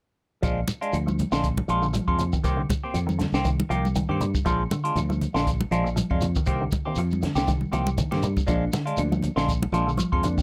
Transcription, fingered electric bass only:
0.43 0.63 A#1 medium
0.93 1.23 D2 medium
1.32 1.60 A#1 medium
1.69 1.99 A#1 medium
2.08 2.36 F2 medium
2.44 2.64 C2 medium
2.94 3.24 F2 medium
3.32 3.61 C2 medium
3.70 4.00 C2 medium
4.09 4.37 G2 medium
4.46 4.66 A#1 medium
4.96 5.26 D2 medium
5.35 5.63 A#1 medium
5.71 6.01 A#1 medium
6.10 6.38 F2 medium
6.47 6.66 C2 medium
6.96 7.27 F2 medium
7.35 7.64 C2 medium
7.72 8.02 C2 medium
8.12 8.40 G2 medium
8.48 8.67 A#1 medium
8.98 9.28 D2 medium
9.37 9.65 A#1 medium
9.72 10.02 A#1 medium
10.13 10.40 F2 medium

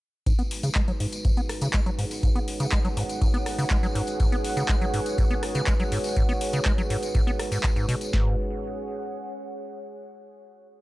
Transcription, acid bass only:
0.26 0.33 G#2 medium
0.39 0.43 B3 loud
0.63 0.70 C#3 loud
0.76 0.82 G#3 loud
0.88 0.92 F#3 loud
1.00 1.07 G#2 medium
1.25 1.32 G#2 medium
1.37 1.41 B3 loud
1.62 1.68 C#3 loud
1.74 1.81 G#3 loud
1.86 1.90 F#3 loud
1.98 2.05 G#2 medium
2.23 2.30 G#2 medium
2.35 2.40 B3 loud
2.60 2.67 C#3 loud
2.72 2.79 G#3 loud
2.85 2.89 F#3 loud
2.97 3.04 G#2 medium
3.21 3.28 G#2 medium
3.34 3.38 B3 loud
3.58 3.65 C#3 loud
3.71 3.77 G#3 loud
3.83 3.87 F#3 loud
3.95 4.02 G#2 medium
4.20 4.27 G#2 medium
4.32 4.36 B3 loud
4.57 4.64 C#3 loud
4.69 4.76 G#3 loud
4.81 4.85 F#3 loud
4.94 5.00 G#2 medium
5.18 5.25 G#2 medium
5.31 5.35 B3 loud
5.55 5.62 C#3 loud
5.67 5.74 G#3 loud
5.80 5.84 F#3 loud
5.92 5.99 G#2 medium
6.17 6.23 G#2 medium
6.29 6.33 B3 loud
6.53 6.60 C#3 loud
6.66 6.73 G#3 loud
6.78 6.82 F#3 loud
6.90 6.97 G#2 medium
7.15 7.22 G#2 medium
7.27 7.31 B3 loud
7.52 7.58 G#2 medium
7.64 7.71 G#1 medium
7.76 7.86 G#2 medium
7.89 7.95 B2 loud
8.13 8.36 G#2 medium

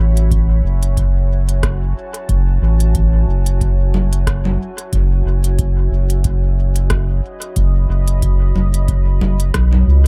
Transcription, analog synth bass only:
0.00 0.61 A1 medium
0.64 1.93 F#1 medium
2.29 2.58 F#1 loud
2.62 3.25 A1 medium
3.28 4.57 F#1 medium
4.93 5.22 F#1 loud
5.25 5.89 F#1 medium
5.91 7.20 F#1 medium
7.56 7.86 F#1 loud
7.89 8.52 F#1 medium
8.55 9.21 F#1 medium
9.21 9.51 F#1 medium
9.54 9.84 B1 medium
9.87 10.07 C#2 medium

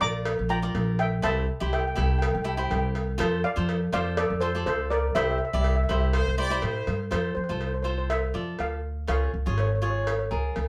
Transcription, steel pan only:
0.01 0.47 A#5 medium
0.01 0.52 D6 loud
0.50 0.96 G5 medium
0.50 1.01 A#5 loud
0.99 1.22 E5 medium
0.99 1.22 G5 medium
1.24 1.69 E5 medium
1.24 1.74 A5 medium
1.73 1.80 E5 medium
1.73 1.79 G5 medium
1.80 1.86 G5 medium
1.87 1.94 G5 medium
1.95 2.02 G5 soft
2.03 2.10 G5 medium
2.11 2.17 G5 soft
2.19 2.25 G5 medium
2.26 2.33 G5 soft
2.34 2.40 G5 soft
2.42 2.48 G5 soft
2.49 2.56 G5 soft
2.57 2.62 G5 soft
2.64 2.69 G5 medium
2.71 2.77 G5 soft
2.78 2.86 G5 medium
3.44 3.90 D5 medium
3.44 3.90 F5 loud
3.94 4.16 D5 medium
3.94 4.16 F5 loud
4.17 4.39 A4 medium
4.17 4.43 D5 medium
4.40 4.64 A4 medium
4.40 4.65 C5 medium
4.66 4.89 A4 medium
4.66 4.89 C5 medium
4.91 5.14 A#4 medium
4.91 5.16 D5 medium
5.15 5.23 C5 medium
5.15 5.22 E5 medium
5.23 5.29 E5 medium
5.31 5.37 E5 medium
5.38 5.44 E5 medium
5.45 5.52 E5 medium
5.54 5.60 E5 medium
5.61 5.67 E5 medium
5.68 5.75 E5 medium
5.76 5.82 E5 medium
5.83 5.90 E5 medium
5.91 5.99 E5 medium
6.00 6.07 E5 medium
7.12 7.34 C5 medium
7.35 7.43 C5 medium
7.44 7.50 C5 medium
7.51 7.58 C5 medium
7.59 7.65 C5 soft
7.67 7.73 C5 medium
7.74 7.81 C5 soft
7.83 7.89 C5 medium
7.90 7.97 C5 soft
7.98 8.05 C5 medium
8.10 8.56 E5 medium
8.60 9.08 F5 medium
9.09 9.60 F5 medium
9.60 9.66 C#5 medium
9.67 9.74 C#5 soft
9.75 9.81 C#5 soft
9.82 9.89 C#5 soft
9.90 9.97 C#5 soft
9.98 10.03 C#5 soft
10.04 10.10 C#5 soft
10.11 10.18 C#5 soft
10.19 10.26 C#5 medium

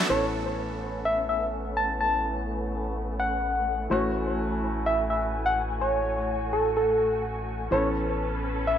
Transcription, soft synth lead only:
0.10 0.26 C#5 medium
1.05 1.22 E5 medium
1.29 1.45 E5 medium
1.77 1.93 A5 medium
2.01 2.36 A5 medium
3.20 3.86 F#5 medium
3.91 4.07 C#5 medium
4.86 5.03 E5 medium
5.10 5.26 E5 medium
5.46 5.62 F#5 medium
5.81 6.48 C#5 medium
6.53 6.69 A4 medium
6.77 7.24 A4 medium
7.72 7.88 C#5 medium
8.67 8.78 E5 medium

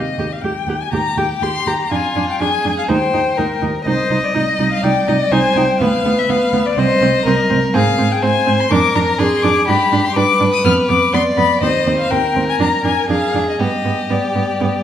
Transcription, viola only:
0.19 0.27 G4 soft
0.44 0.52 G4 soft
0.69 0.77 G4 soft
0.93 1.01 G4 soft
1.18 1.26 G4 soft
1.43 1.51 G4 soft
1.67 1.75 G4 soft
1.91 1.99 D4 soft
2.16 2.24 D4 soft
2.41 2.49 D4 soft
2.65 2.73 D4 soft
2.89 2.97 D#4 medium
3.14 3.22 D#4 soft
3.38 3.46 D#4 medium
3.62 3.70 D#4 soft
3.86 3.94 D#4 medium
4.11 4.19 D#4 soft
4.35 4.43 D#4 medium
4.59 4.67 D#4 soft
4.84 4.92 D#4 medium
5.08 5.16 D#4 medium
5.32 5.40 D#4 medium
5.56 5.64 D#4 medium
5.81 5.89 B3 medium
6.05 6.13 B3 soft
6.29 6.37 B3 medium
6.53 6.61 B3 soft
6.78 6.86 C4 medium
7.02 7.10 C4 medium
7.26 7.34 C4 medium
7.50 7.58 C4 medium
7.74 7.82 C4 medium
7.98 8.06 C4 soft
8.23 8.31 C4 medium
8.47 8.55 C4 medium
8.71 8.79 D4 medium
8.95 9.03 D4 medium
9.19 9.27 D4 medium
9.44 9.52 D4 medium
9.68 9.76 D4 medium
9.93 10.01 D4 soft
10.17 10.25 D4 medium
10.40 10.48 D4 medium
10.65 10.73 B3 medium
10.89 10.97 B3 medium
11.13 11.21 B3 medium
11.38 11.46 B3 medium
11.62 11.70 C4 medium
11.87 11.95 C4 soft
12.11 12.19 C4 soft
12.36 12.44 C4 soft
12.60 12.68 D4 medium
12.85 12.93 D4 soft
13.10 13.18 D4 medium
13.35 13.43 D4 soft
13.60 13.68 B3 medium
13.85 13.93 B3 soft
14.10 14.18 B3 soft
14.35 14.43 B3 soft
14.60 14.68 B3 medium

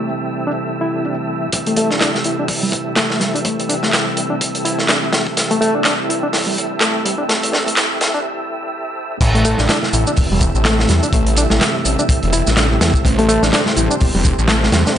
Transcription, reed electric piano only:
0.47 0.51 D4 medium
0.81 1.04 E4 medium
1.05 1.14 D4 medium
1.67 1.76 A3 medium
1.77 1.90 A3 medium
1.91 1.97 D4 medium
2.01 2.10 D4 medium
2.25 2.34 E4 medium
2.39 2.43 D4 medium
2.63 2.72 G3 medium
2.97 3.20 A3 medium
3.21 3.29 G3 medium
3.35 3.38 D4 medium
3.45 3.68 A3 medium
3.69 3.74 D4 medium
3.83 3.92 A3 medium
4.30 4.34 D4 loud
4.65 4.88 E4 medium
4.89 4.97 D4 medium
5.51 5.60 A3 loud
5.61 5.74 A3 loud
5.75 5.81 D4 loud
5.85 5.94 D4 loud
6.09 6.18 E4 medium
6.23 6.27 D4 loud
6.47 6.56 G3 loud
6.80 7.04 A3 loud
7.05 7.13 G3 loud
7.18 7.22 D4 loud
7.29 7.52 A3 medium
7.53 7.58 D4 loud
7.67 7.76 A3 medium
8.15 8.18 D4 loud
9.35 9.44 A3 loud
9.45 9.58 A3 medium
9.59 9.65 D4 loud
9.70 9.78 D4 loud
9.94 10.02 E4 medium
10.07 10.11 D4 loud
10.32 10.41 G3 medium
10.66 10.88 A3 loud
10.90 10.98 G3 loud
11.03 11.07 D4 medium
11.14 11.36 A3 medium
11.38 11.42 D4 loud
11.51 11.60 A3 medium
11.99 12.03 D4 loud
12.33 12.56 E4 medium
12.57 12.66 D4 medium
13.19 13.28 A3 loud
13.29 13.42 A3 loud
13.43 13.49 D4 loud
13.52 13.61 D4 loud
13.77 13.85 E4 medium
13.91 13.94 D4 loud
14.15 14.24 G3 loud
14.49 14.72 A3 loud
14.73 14.82 G3 medium
14.87 14.91 D4 loud

